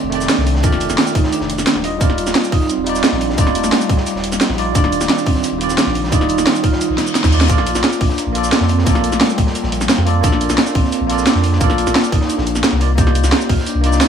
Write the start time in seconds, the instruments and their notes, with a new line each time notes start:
Already playing: tine electric piano D#3 A3 D#4 G4 D5, vibraphone C4
0.04 sub bass F1
0.10 tine electric piano D#3 A3 G4, closed hi-hat
0.15 tine electric piano D5
0.21 snare, shaker
0.29 vibraphone D4, snare, closed hi-hat, shaker
0.38 sub bass C2, snare
0.46 closed hi-hat, open hi-hat
0.55 snare
0.61 sub bass F1, tine electric piano D#3 A3 G4, vibraphone F4, kick, closed hi-hat, shaker
0.66 tine electric piano D5
0.72 snare, closed hi-hat
0.80 closed hi-hat, shaker
0.90 sub bass F1, snare, shaker
0.98 snare, closed hi-hat
1.07 shaker
1.15 sub bass F1, vibraphone D#4, kick, closed hi-hat, open hi-hat
1.24 snare
1.32 vibraphone D4, closed hi-hat, shaker
1.41 sub bass F1, snare
1.50 closed hi-hat
1.58 snare, shaker
1.66 snare, closed hi-hat, shaker
1.75 sub bass D#1, snare
1.82 tine electric piano G3 D#4 F4 D#5, closed hi-hat, open hi-hat
1.98 sub bass D#1, tine electric piano G3 D#4 F4, vibraphone F4, kick, closed hi-hat, shaker
2.03 tine electric piano D5
2.10 snare
2.18 closed hi-hat, shaker
2.27 sub bass D#1, snare, shaker
2.35 snare, closed hi-hat
2.44 shaker
2.52 sub bass D#1, vibraphone D#4, kick, open hi-hat
2.61 snare
2.69 vibraphone C4, closed hi-hat, shaker
2.78 sub bass D#1
2.84 tine electric piano G3 D#4 F4, closed hi-hat
2.89 tine electric piano D5
2.95 snare, shaker
3.04 snare, closed hi-hat, shaker
3.12 sub bass A#1, snare
3.21 vibraphone D4, closed hi-hat, open hi-hat
3.30 snare
3.35 sub bass D#1, tine electric piano G3 D#4 F4, vibraphone C4, kick, closed hi-hat, shaker
3.41 tine electric piano D5
3.47 snare
3.55 vibraphone A3, closed hi-hat, shaker
3.64 sub bass D#1, snare, shaker
3.72 vibraphone G3, snare, closed hi-hat
3.81 shaker
3.89 sub bass D#1, kick, closed hi-hat, open hi-hat
3.97 snare
4.07 closed hi-hat, shaker
4.15 sub bass D#1, snare
4.24 closed hi-hat
4.32 snare, shaker
4.41 snare, closed hi-hat, shaker
4.49 sub bass A#1, snare
4.57 tine electric piano G3 D#4 F4 D5, closed hi-hat, open hi-hat
4.72 sub bass D#1, tine electric piano D#3 G3 F4, vibraphone D4, kick, closed hi-hat, shaker
4.78 tine electric piano D5
4.84 snare
4.92 closed hi-hat, shaker
5.01 sub bass D#1, snare, shaker
5.09 snare, closed hi-hat
5.18 shaker
5.26 sub bass D#1, vibraphone C4, kick, open hi-hat
5.35 snare
5.44 closed hi-hat, shaker
5.52 sub bass D#1
5.58 tine electric piano D#3 G3 F4, closed hi-hat
5.64 tine electric piano D5
5.68 snare, shaker
5.77 vibraphone D4, snare, closed hi-hat, shaker
5.86 sub bass A#1, snare
5.95 closed hi-hat, open hi-hat
6.04 snare
6.10 sub bass D#1, tine electric piano G3 D#4 F4, vibraphone D#4, kick, closed hi-hat, shaker
6.15 tine electric piano D5
6.21 snare, closed hi-hat
6.29 closed hi-hat, shaker
6.38 sub bass D#1, snare, shaker
6.46 snare, closed hi-hat
6.55 shaker
6.64 sub bass D#1, vibraphone F4, kick, closed hi-hat, open hi-hat
6.73 snare
6.81 vibraphone D#4, closed hi-hat, reverse cymbal, shaker
6.90 sub bass A#1
6.98 snare, closed hi-hat
7.07 shaker
7.15 snare, closed hi-hat, shaker
7.24 sub bass D#2, kick, snare, closed hi-hat, shaker
7.31 tine electric piano G3 D#4 F4 D5, open hi-hat, shaker
7.41 snare, closed hi-hat, shaker
7.47 sub bass A#1, tine electric piano A#3 F4 A4, vibraphone F4, kick, closed hi-hat, shaker
7.52 tine electric piano D5
7.58 snare
7.67 closed hi-hat, shaker
7.75 sub bass A#1, snare, shaker
7.84 snare, closed hi-hat
7.93 shaker
8.01 sub bass A#1, vibraphone D4, kick, open hi-hat
8.10 snare
8.18 vibraphone A#3, closed hi-hat, shaker
8.27 sub bass A#1
8.32 tine electric piano A#3 F4 A4, closed hi-hat
8.38 tine electric piano D5
8.44 snare, shaker
8.52 vibraphone A#3, snare, closed hi-hat, shaker
8.61 sub bass F2, snare
8.69 vibraphone C4, closed hi-hat, open hi-hat
8.79 snare
8.84 sub bass A#1, tine electric piano A#3 F4 A4, vibraphone A#3, kick, closed hi-hat, shaker
8.90 tine electric piano D5
8.95 snare
9.04 vibraphone A3, closed hi-hat, shaker
9.12 sub bass A#1, snare, shaker
9.21 vibraphone G3, snare, closed hi-hat
9.30 shaker
9.38 sub bass A#1, kick, closed hi-hat, open hi-hat
9.47 snare
9.55 closed hi-hat, shaker
9.63 sub bass A#1, snare
9.72 closed hi-hat
9.81 snare, shaker
9.89 snare, closed hi-hat, shaker
9.98 sub bass F2, snare
10.05 tine electric piano A#3 F4 A4 D5, closed hi-hat, open hi-hat
10.21 sub bass A#1, tine electric piano A#3 F4 A4, vibraphone D4, kick, closed hi-hat, shaker
10.27 tine electric piano D5
10.32 snare
10.41 closed hi-hat, shaker
10.49 sub bass A#1, snare, shaker
10.58 snare, closed hi-hat
10.67 shaker
10.75 sub bass A#1, vibraphone C4, kick, open hi-hat
10.85 snare
10.92 closed hi-hat, shaker
11.01 sub bass A#1
11.07 tine electric piano A#3 F4 A4, vibraphone C4, closed hi-hat
11.12 tine electric piano D5
11.18 snare, shaker
11.26 vibraphone D4, snare, closed hi-hat, shaker
11.35 sub bass F2, snare
11.43 closed hi-hat, open hi-hat
11.52 snare
11.58 sub bass A#1, tine electric piano A#3 F4 A4, vibraphone F4, kick, closed hi-hat, shaker
11.64 tine electric piano D5
11.70 snare, closed hi-hat
11.78 closed hi-hat, shaker
11.87 sub bass A#1, snare, shaker
11.95 snare, closed hi-hat
12.04 shaker
12.12 sub bass A#1, vibraphone D#4, kick, closed hi-hat, open hi-hat
12.21 snare
12.29 vibraphone D4, closed hi-hat, shaker
12.38 sub bass A#1, snare
12.46 closed hi-hat
12.55 snare, shaker
12.63 snare, closed hi-hat, shaker
12.72 sub bass C2, snare
12.80 tine electric piano A#3 D#4 F4 D5, closed hi-hat, open hi-hat
12.95 sub bass C2, tine electric piano A#3 D#4 F4, vibraphone G4, kick, closed hi-hat, shaker
13.01 tine electric piano D5
13.07 snare
13.15 closed hi-hat, shaker
13.24 sub bass C2, snare, shaker
13.32 snare, closed hi-hat
13.41 shaker
13.49 sub bass C2, vibraphone F4, kick, open hi-hat
13.58 snare
13.67 vibraphone D4, closed hi-hat, shaker
13.75 sub bass C2
13.81 tine electric piano A#3 D#4 F4, closed hi-hat
13.87 tine electric piano D5
13.93 snare, shaker
14.01 vibraphone D#4, snare, closed hi-hat, shaker